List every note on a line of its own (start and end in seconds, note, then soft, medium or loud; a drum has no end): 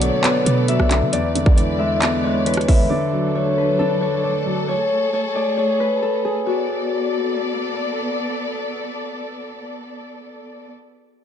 0.00 0.11 B1 loud
0.00 0.46 B2 medium
0.00 0.68 D3 medium
0.00 0.67 F#3 medium
0.00 0.45 A3 medium
0.00 1.11 B3 medium
0.00 1.41 G#4 medium
0.00 1.11 A4 medium
0.00 0.24 B4 medium
0.00 0.52 C#5 medium
0.00 1.11 D5 medium
0.00 0.96 F#5 loud
0.00 closed hi-hat medium
0.24 1.13 B3 loud
0.24 2.29 B4 medium
0.24 clap loud
0.24 closed hi-hat medium
0.46 0.78 B2 loud
0.46 1.13 A3 medium
0.46 1.12 D5 medium
0.46 closed hi-hat medium
0.68 1.13 F#3 medium
0.68 1.78 E5 medium
0.68 closed hi-hat medium
0.80 1.03 B1 loud
0.80 cross-stick medium
0.91 1.13 D3 medium
0.91 clap medium
0.91 closed hi-hat medium
1.02 1.12 D3 loud
1.12 2.24 E2 medium
1.12 2.89 G#3 medium
1.12 2.89 E4 medium
1.12 1.56 D5 loud
1.12 2.89 D5 medium
1.12 closed hi-hat medium
1.35 2.46 D3 medium
1.35 closed hi-hat medium
1.46 kick loud
1.56 2.45 E3 medium
1.56 2.01 D5 medium
1.56 closed hi-hat medium
1.79 2.22 G#3 medium
1.79 2.68 E5 medium
2.02 2.91 B3 loud
2.02 2.30 D5 medium
2.02 clap loud
2.02 closed hi-hat medium
2.24 2.91 G#3 medium
2.24 2.96 C#5 medium
2.46 2.91 E3 medium
2.46 3.57 B4 medium
2.46 closed hi-hat medium
2.54 cross-stick medium
2.54 closed hi-hat medium
2.61 closed hi-hat medium
2.68 2.89 D3 medium
2.68 4.40 E5 medium
2.68 kick medium
2.68 open hi-hat medium
2.90 4.02 D3 loud
2.90 4.67 F#3 medium
2.90 4.67 D4 medium
2.90 6.43 A4 medium
2.90 3.41 D5 loud
3.13 4.24 F#3 medium
3.35 4.22 A3 medium
3.35 4.01 C#5 medium
3.58 5.63 B4 medium
3.79 4.69 D4 loud
3.79 5.99 A4 loud
4.01 4.30 C#5 medium
4.24 4.68 A3 medium
4.24 4.74 D5 medium
4.46 4.68 F#3 medium
4.68 6.45 A3 medium
4.68 6.45 G#4 medium
4.68 5.13 C#5 loud
5.13 5.41 C#5 medium
5.35 5.63 D5 medium
5.57 7.48 C#5 medium
5.80 7.85 B4 medium
6.02 6.31 A4 medium
6.25 8.52 G#4 medium
6.46 10.71 B3 medium
6.46 8.90 F#4 medium
6.46 10.71 A4 medium
6.46 10.71 D5 medium